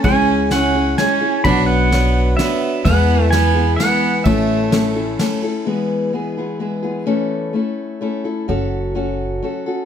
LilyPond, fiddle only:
\new Staff \with { instrumentName = "Fiddle" } { \time 3/4 \key e \mixolydian \tempo 4 = 128 cis'4 cis'4 cis'4 | d'8 b4. b4 | b4 b4 b4 | a2 r4 |
r2. | r2. | r2. | }